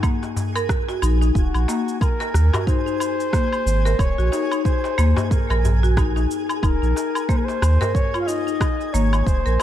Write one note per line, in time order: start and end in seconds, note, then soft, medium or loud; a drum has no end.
0.00 0.22 A#3 medium
0.00 0.36 F#4 medium
0.00 9.63 G#4 medium
0.00 9.63 G#5 medium
0.00 kick loud
0.00 cabasa soft
0.00 low woodblock medium
0.23 darbuka ka soft
0.23 darbuka tek medium
0.23 cabasa soft
0.36 darbuka ka medium
0.36 darbuka dum medium
0.36 cabasa medium
0.56 0.87 A#4 medium
0.56 cabasa soft
0.56 low woodblock medium
0.69 kick loud
0.69 cross-stick medium
0.69 cabasa soft
0.88 1.02 F#4 medium
0.88 darbuka tek medium
0.88 cabasa soft
1.02 1.31 A#1 loud
1.02 1.20 D#4 medium
1.02 cabasa medium
1.02 low woodblock medium
1.21 1.35 D#4 medium
1.21 darbuka ka soft
1.21 cabasa soft
1.35 1.51 D#1 loud
1.35 1.97 F#4 medium
1.35 kick loud
1.35 cabasa soft
1.54 1.66 A#1 medium
1.54 cabasa soft
1.54 low woodblock medium
1.68 1.86 A#3 medium
1.68 darbuka tek medium
1.68 cabasa medium
1.88 cabasa soft
2.01 2.63 A#4 medium
2.01 kick loud
2.01 cabasa soft
2.01 low woodblock medium
2.20 2.51 A#4 medium
2.20 darbuka tek medium
2.20 cabasa soft
2.34 2.50 D#2 loud
2.34 cross-stick medium
2.34 cabasa medium
2.53 2.67 F#4 medium
2.53 darbuka ka medium
2.53 darbuka tek medium
2.53 darbuka dum medium
2.53 cabasa soft
2.53 low woodblock medium
2.67 2.85 D#4 medium
2.67 4.00 C5 loud
2.67 kick loud
2.67 cabasa soft
2.86 2.99 D#4 medium
2.86 cabasa soft
3.00 darbuka ka soft
3.00 cabasa medium
3.00 low woodblock medium
3.20 cabasa soft
3.33 3.51 A#3 medium
3.33 kick loud
3.33 cross-stick medium
3.33 cabasa soft
3.53 cabasa soft
3.53 low woodblock medium
3.66 3.95 G#1 medium
3.66 cabasa medium
3.85 4.16 A#4 medium
3.85 darbuka ka soft
3.85 darbuka tek medium
3.85 cabasa soft
3.99 4.15 D#1 loud
3.99 4.64 C#5 loud
3.99 kick loud
3.99 cabasa soft
3.99 low woodblock medium
4.18 4.30 A#1 medium
4.18 4.31 F#4 medium
4.18 cabasa soft
4.32 4.50 D#4 medium
4.32 darbuka tek medium
4.32 cabasa medium
4.52 4.65 D#4 medium
4.52 cabasa soft
4.52 low woodblock medium
4.65 5.25 C5 medium
4.65 kick loud
4.65 cabasa soft
4.84 darbuka tek medium
4.84 cabasa soft
4.98 5.14 D#2 medium
4.98 5.16 A#3 loud
4.98 cabasa medium
4.98 low woodblock medium
5.17 darbuka ka medium
5.17 darbuka tek medium
5.17 darbuka dum loud
5.17 cabasa soft
5.25 5.32 C5 medium
5.31 5.97 A#4 medium
5.31 kick loud
5.31 cabasa soft
5.50 6.27 A#1 medium
5.50 5.81 A#4 medium
5.50 darbuka ka soft
5.50 darbuka tek medium
5.50 cabasa soft
5.50 low woodblock medium
5.65 darbuka ka soft
5.65 darbuka dum medium
5.65 cabasa medium
5.83 5.96 F#4 medium
5.83 cabasa soft
5.97 6.15 D#4 medium
5.97 kick loud
5.97 cross-stick medium
5.97 cabasa soft
5.97 low woodblock medium
6.16 6.29 D#4 medium
6.16 darbuka tek medium
6.16 cabasa soft
6.31 cabasa medium
6.49 darbuka ka soft
6.49 cabasa soft
6.49 low woodblock medium
6.63 6.79 D#1 loud
6.63 6.81 D#4 medium
6.63 7.30 A#4 medium
6.63 kick loud
6.63 cabasa soft
6.63 low woodblock medium
6.82 6.94 A#1 medium
6.82 6.95 D#4 medium
6.82 cabasa soft
6.96 darbuka tek medium
6.96 cabasa medium
7.15 cabasa soft
7.15 low woodblock medium
7.29 7.47 A#3 medium
7.29 7.39 C5 medium
7.29 kick medium
7.29 cabasa soft
7.37 7.46 A#4 medium
7.45 7.96 C5 medium
7.45 darbuka tek medium
7.49 cabasa soft
7.62 7.78 D#2 loud
7.62 cross-stick medium
7.62 cabasa medium
7.62 low woodblock medium
7.81 8.12 A#4 medium
7.81 darbuka ka medium
7.81 darbuka tek medium
7.81 darbuka dum loud
7.81 cabasa soft
7.94 8.20 C#5 loud
7.94 kick loud
7.94 cabasa soft
8.14 8.27 F4 medium
8.14 cabasa soft
8.14 low woodblock medium
8.21 8.29 F5 medium
8.27 8.46 D#4 medium
8.27 8.95 D#5 loud
8.27 darbuka ka soft
8.27 cabasa medium
8.47 8.60 D#4 medium
8.47 cabasa soft
8.61 kick loud
8.61 cross-stick medium
8.61 cabasa soft
8.61 low woodblock medium
8.81 cabasa soft
8.93 9.23 G#1 medium
8.93 9.12 A#3 loud
8.93 9.28 C#5 medium
8.93 cabasa medium
9.13 darbuka ka soft
9.13 darbuka tek medium
9.13 cabasa soft
9.13 low woodblock medium
9.26 9.43 D#1 loud
9.26 9.63 C5 loud
9.26 kick medium
9.26 cabasa soft
9.46 9.58 A#1 medium
9.46 9.63 A#4 medium
9.46 cabasa soft
9.60 darbuka tek medium
9.60 low woodblock medium